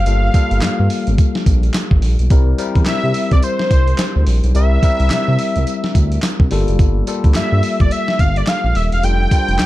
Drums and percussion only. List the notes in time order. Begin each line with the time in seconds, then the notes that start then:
0.06 closed hi-hat, tambourine
0.34 kick, closed hi-hat, tambourine
0.51 closed hi-hat
0.61 snare, clap, closed hi-hat, tambourine
0.90 open hi-hat, tambourine
1.07 closed hi-hat
1.18 kick, closed hi-hat, tambourine
1.35 snare
1.46 kick, closed hi-hat, tambourine
1.63 closed hi-hat
1.74 snare, clap, closed hi-hat, tambourine
1.91 kick
2.02 open hi-hat
2.19 closed hi-hat
2.30 kick, closed hi-hat, tambourine
2.58 closed hi-hat, tambourine
2.75 kick, closed hi-hat
2.86 snare, clap, closed hi-hat, tambourine
3.14 open hi-hat, tambourine
3.31 kick, closed hi-hat
3.42 closed hi-hat, tambourine
3.59 snare
3.70 kick, closed hi-hat, tambourine
3.87 closed hi-hat
3.98 snare, clap, closed hi-hat, tambourine
4.27 open hi-hat
4.44 closed hi-hat
4.55 closed hi-hat, tambourine
4.83 kick, closed hi-hat, tambourine
5.00 closed hi-hat
5.10 snare, clap, closed hi-hat, tambourine
5.39 open hi-hat, tambourine
5.56 closed hi-hat
5.67 closed hi-hat, tambourine
5.84 snare
5.95 kick, closed hi-hat, tambourine
6.12 closed hi-hat
6.22 snare, clap, closed hi-hat, tambourine
6.40 kick
6.51 open hi-hat
6.68 closed hi-hat
6.79 kick, closed hi-hat, tambourine
7.07 closed hi-hat, tambourine
7.24 kick, closed hi-hat
7.34 snare, clap, closed hi-hat, tambourine
7.63 open hi-hat, tambourine
7.80 kick, closed hi-hat
7.91 closed hi-hat, tambourine
8.08 snare
8.19 kick, closed hi-hat, tambourine
8.36 closed hi-hat
8.47 snare, clap, closed hi-hat, tambourine
8.75 open hi-hat
8.92 closed hi-hat
9.03 closed hi-hat, tambourine
9.31 kick, closed hi-hat, tambourine
9.48 closed hi-hat
9.59 snare, clap, closed hi-hat, tambourine